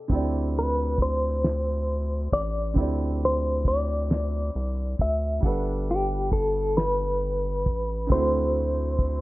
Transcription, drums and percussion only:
0.10 kick, closed hi-hat
0.55 closed hi-hat
0.98 kick, closed hi-hat
1.43 snare, closed hi-hat
1.87 closed hi-hat
2.31 kick, closed hi-hat
2.76 kick, closed hi-hat
3.20 closed hi-hat
3.65 kick, closed hi-hat
4.10 snare, closed hi-hat
4.54 closed hi-hat
4.97 kick, closed hi-hat
5.43 kick, closed hi-hat
5.87 closed hi-hat
6.31 kick, closed hi-hat
6.76 snare, closed hi-hat
7.21 closed hi-hat
7.65 kick, closed hi-hat
8.10 kick, closed hi-hat
8.55 closed hi-hat
8.99 kick, closed hi-hat

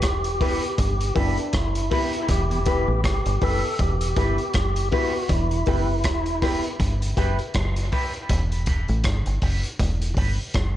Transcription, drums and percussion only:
0.02 kick, cross-stick, closed hi-hat
0.24 closed hi-hat
0.41 kick, open hi-hat
0.62 closed hi-hat
0.78 kick, closed hi-hat
1.00 closed hi-hat
1.16 kick, open hi-hat
1.37 closed hi-hat
1.53 kick, cross-stick, closed hi-hat
1.75 closed hi-hat
1.91 kick, open hi-hat
2.13 closed hi-hat
2.28 kick, closed hi-hat
2.51 closed hi-hat
2.66 kick, closed hi-hat
3.04 kick, cross-stick, closed hi-hat
3.26 closed hi-hat
3.41 kick, open hi-hat
3.79 kick, closed hi-hat
4.01 closed hi-hat
4.16 kick, closed hi-hat
4.38 closed hi-hat
4.53 kick, cross-stick, closed hi-hat
4.76 closed hi-hat
4.92 kick, open hi-hat
5.29 kick, closed hi-hat
5.51 closed hi-hat
5.66 kick, open hi-hat
6.04 kick, cross-stick, closed hi-hat
6.26 closed hi-hat
6.42 kick, cross-stick, open hi-hat
6.64 closed hi-hat
6.80 kick, closed hi-hat
7.02 closed hi-hat
7.17 kick, closed hi-hat
7.39 closed hi-hat
7.54 kick, cross-stick, closed hi-hat
7.76 closed hi-hat
7.92 kick, open hi-hat
8.13 closed hi-hat
8.29 kick, closed hi-hat
8.52 closed hi-hat
8.66 kick, closed hi-hat
8.88 closed hi-hat
9.04 kick, cross-stick, closed hi-hat
9.26 closed hi-hat
9.42 kick, open hi-hat
9.63 closed hi-hat
9.79 kick, closed hi-hat
10.01 closed hi-hat
10.17 kick, open hi-hat
10.54 kick, cross-stick, closed hi-hat

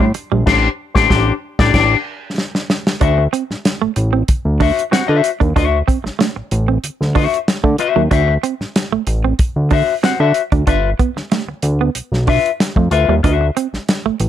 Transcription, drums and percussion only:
0.00 kick
0.14 closed hi-hat
0.47 kick, snare, crash
0.96 kick, snare
1.11 kick, snare
1.59 kick, snare
1.74 kick, snare, crash
2.38 snare
2.55 snare
2.70 snare
2.87 snare
3.01 kick, closed hi-hat
3.33 closed hi-hat
3.51 snare
3.65 snare, closed hi-hat
3.96 closed hi-hat
4.28 kick, closed hi-hat
4.60 kick, open hi-hat
4.79 closed hi-hat
4.93 snare, closed hi-hat
5.24 closed hi-hat
5.41 kick, closed hi-hat
5.56 kick, closed hi-hat
5.88 kick, closed hi-hat
6.06 snare
6.21 snare, closed hi-hat
6.51 closed hi-hat
6.84 closed hi-hat
7.02 snare
7.15 kick, open hi-hat
7.34 closed hi-hat
7.48 snare, closed hi-hat
7.64 kick
7.78 closed hi-hat
8.11 kick, closed hi-hat
8.44 closed hi-hat
8.61 snare
8.76 snare, closed hi-hat
9.07 closed hi-hat
9.39 kick, closed hi-hat
9.71 kick, open hi-hat
10.04 snare, closed hi-hat
10.34 closed hi-hat
10.52 kick, closed hi-hat
10.67 kick, closed hi-hat
10.99 kick, closed hi-hat
11.17 snare
11.32 snare, closed hi-hat
11.62 closed hi-hat
11.95 closed hi-hat
12.13 snare
12.27 kick, open hi-hat
12.46 closed hi-hat
12.60 snare, closed hi-hat
12.76 kick
12.91 closed hi-hat
13.24 kick, closed hi-hat
13.57 closed hi-hat
13.74 snare
13.89 snare, closed hi-hat
14.20 closed hi-hat

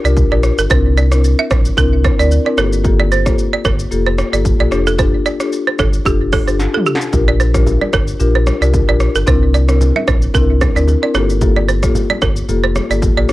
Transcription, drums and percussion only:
0.05 shaker
0.17 kick, shaker
0.43 cross-stick, shaker
0.58 shaker
0.70 kick, shaker
0.97 shaker
1.12 cross-stick, shaker
1.24 shaker
1.51 kick, cross-stick, shaker
1.65 shaker
1.77 kick, shaker
2.04 kick, cross-stick, shaker
2.20 shaker
2.31 shaker
2.58 cross-stick, shaker
2.73 shaker
2.85 kick, shaker
3.12 shaker
3.26 kick, cross-stick, shaker
3.38 shaker
3.65 kick, cross-stick, shaker
3.79 shaker
3.92 shaker
4.18 cross-stick, shaker
4.34 shaker
4.45 kick, shaker
4.72 cross-stick, shaker
4.87 shaker
4.99 kick, shaker
5.26 shaker
5.40 cross-stick, shaker
5.52 shaker
5.79 kick, cross-stick, shaker
5.93 shaker
6.05 kick, shaker
6.32 kick, cross-stick, open hi-hat, shaker
6.48 shaker
6.59 snare, shaker
6.77 mid tom
6.86 shaker
6.95 snare
7.01 shaker
7.13 kick, low conga, shaker
7.40 shaker
7.54 kick, cross-stick, low bongo, shaker
7.66 high bongo, low conga, shaker
7.82 low bongo
7.93 kick, cross-stick, low bongo, shaker
8.07 shaker
8.20 low conga, shaker
8.47 cross-stick, high bongo, low bongo, shaker
8.62 shaker
8.73 kick, high bongo, shaker
9.00 cross-stick, shaker
9.15 shaker
9.27 kick, low conga, shaker
9.54 shaker
9.69 cross-stick, low bongo, shaker
9.81 high bongo, low conga, shaker
9.96 low bongo
10.08 kick, cross-stick, low bongo, shaker
10.22 shaker
10.34 kick, low conga, shaker
10.61 kick, cross-stick, high bongo, low bongo, shaker
10.77 shaker
10.88 high bongo, shaker
11.14 cross-stick, shaker
11.30 shaker
11.41 kick, low conga, shaker
11.69 shaker
11.83 kick, cross-stick, low bongo, shaker
11.95 high bongo, low conga, shaker
12.10 low bongo
12.22 kick, cross-stick, low bongo, shaker
12.36 shaker
12.49 low conga, shaker
12.76 cross-stick, high bongo, low bongo, shaker
12.91 shaker
13.02 kick, high bongo, shaker
13.29 cross-stick, shaker

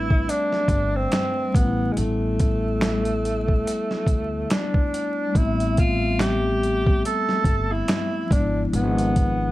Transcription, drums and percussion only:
0.10 kick
0.29 closed hi-hat
0.52 snare
0.68 kick, closed hi-hat
1.12 finger snap, snare, closed hi-hat
1.54 kick, closed hi-hat
1.97 closed hi-hat
2.39 kick, closed hi-hat
2.81 finger snap, snare, closed hi-hat
3.05 closed hi-hat
3.25 closed hi-hat
3.48 kick
3.67 closed hi-hat
3.91 snare
4.06 kick, closed hi-hat
4.50 finger snap, snare, closed hi-hat
4.74 kick
4.94 closed hi-hat
5.35 kick, closed hi-hat
5.60 closed hi-hat
5.77 kick, closed hi-hat
6.19 finger snap, snare, closed hi-hat
6.63 closed hi-hat
6.86 kick
7.05 closed hi-hat
7.29 snare
7.44 kick, closed hi-hat
7.88 finger snap, snare, closed hi-hat
8.31 kick, closed hi-hat
8.74 closed hi-hat
8.98 closed hi-hat
9.16 kick, closed hi-hat

